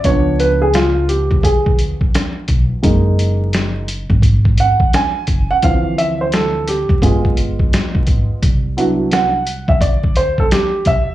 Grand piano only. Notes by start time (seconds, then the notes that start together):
0.05 F3 B3 D4 C#5
0.40 B4
0.62 G#4
0.75 F4
1.09 G4
1.44 G#4
2.82 G#3 A#3 D#4
4.60 F#5
4.95 G#5
5.51 F#5
5.63 E3 F3 C4 F5
5.98 E5
6.21 C5
6.34 A4
6.68 G4
7.02 G#3 B3 F4 G#4
8.77 F#3 B3 D4 E4 F#4
9.13 F#5
9.69 E5
9.81 D5
10.17 C5
10.40 A4
10.52 G4
10.87 E5